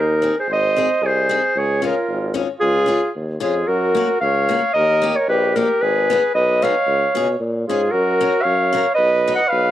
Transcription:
Already playing: tuba D#2
0.00 trumpet D#4, clarinet A#4
0.22 steel-string acoustic guitar C4 D#4 G#4
0.39 trumpet G#4, clarinet C5
0.48 tuba G#1, trumpet C5
0.53 clarinet D#5
0.77 steel-string acoustic guitar C4 D#4 G#4
1.02 tuba C2, trumpet G#4
1.06 clarinet C5
1.29 steel-string acoustic guitar C4 D#4 G#4
1.56 tuba C#2, trumpet G#4, clarinet C#5
1.82 steel-string acoustic guitar C#4 F4 G#4, trumpet F4
1.86 clarinet A#4
2.08 tuba G#1
2.34 steel-string acoustic guitar C#4 F4 G#4
2.60 tuba C#2, trumpet F4, clarinet G#4
2.86 steel-string acoustic guitar C#4 F4 G#4
3.15 tuba D#2
3.40 tuba F2, steel-string acoustic guitar C#4 F4 G#4, trumpet F4, clarinet G#4
3.67 tuba F#2, trumpet F#4, clarinet A#4
3.94 steel-string acoustic guitar A#3 C#4 F#4
4.21 tuba C#2, trumpet C#5, clarinet F5
4.48 steel-string acoustic guitar A#3 C#4 F#4
4.73 tuba D#2, trumpet A#4, clarinet D#5
5.02 steel-string acoustic guitar A#3 D#4 G4
5.16 trumpet A#4, clarinet C#5
5.28 tuba A#1, trumpet G4, clarinet B4
5.55 steel-string acoustic guitar A#3 D#4 G4, trumpet G4, clarinet A#4
5.81 tuba G#1, trumpet G#4, clarinet B4
6.10 steel-string acoustic guitar B3 D#4 G#4
6.35 tuba B1, trumpet B4, clarinet D#5
6.62 steel-string acoustic guitar B3 D#4 G#4, trumpet C#5, clarinet F5
6.87 tuba C#2
7.14 tuba B2, steel-string acoustic guitar C#4 F4 G#4
7.40 tuba A#2
7.67 tuba G#2, steel-string acoustic guitar C#4 F4 G#4, trumpet F4, clarinet G#4
7.91 tuba F#2, trumpet F#4, clarinet A#4
8.21 steel-string acoustic guitar C#4 F#4 A#4
8.42 tuba F#2, trumpet C#5, clarinet F5
8.73 steel-string acoustic guitar C#4 F#4 A#4
8.94 trumpet B4, clarinet D#5
8.98 tuba B1
9.28 steel-string acoustic guitar D#4 F#4 B4
9.35 trumpet D#5, clarinet F#5
9.48 trumpet B4, clarinet F5
9.52 tuba B1

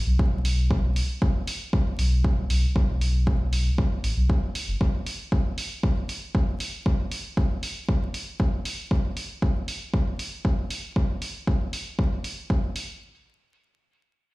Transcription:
0.07 sub bass B1
0.19 kick
0.45 open hi-hat
0.71 kick
0.96 open hi-hat
1.22 kick
1.48 open hi-hat
1.73 kick
1.99 sub bass B1, open hi-hat
2.24 kick
2.50 sub bass B1, open hi-hat
2.76 sub bass B1, kick
3.01 open hi-hat
3.27 kick
3.53 open hi-hat
3.78 kick
4.04 sub bass A1, open hi-hat
4.17 sub bass B1
4.30 sub bass A1, kick
4.55 open hi-hat
4.68 sub bass F#1
4.81 kick
5.07 open hi-hat
5.32 kick
5.58 open hi-hat
5.83 kick
6.09 open hi-hat
6.35 kick
6.60 open hi-hat
6.86 kick
7.12 open hi-hat
7.37 kick
7.63 open hi-hat
7.89 kick
8.14 open hi-hat
8.40 kick
8.65 open hi-hat
8.91 kick
9.17 open hi-hat
9.42 kick
9.68 open hi-hat
9.94 kick
10.19 open hi-hat
10.45 kick
10.71 open hi-hat
10.96 kick
11.22 open hi-hat
11.47 kick
11.73 open hi-hat
11.99 kick
12.24 open hi-hat
12.50 kick
12.76 open hi-hat

